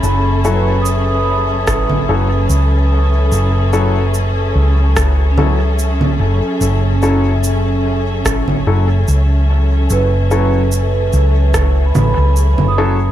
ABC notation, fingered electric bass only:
X:1
M:4/4
L:1/16
Q:"Swing 16ths" 1/4=73
K:F#dor
V:1 name="Fingered electric bass" clef=bass
F,,,8 A,,,2 F,,,2 C,,4 | F,,,6 C,,8 F,,, z | F,,,8 A,,,2 F,,,2 C,,4 | F,,,6 C,,4 A,,, C,,2 F,,,3 |]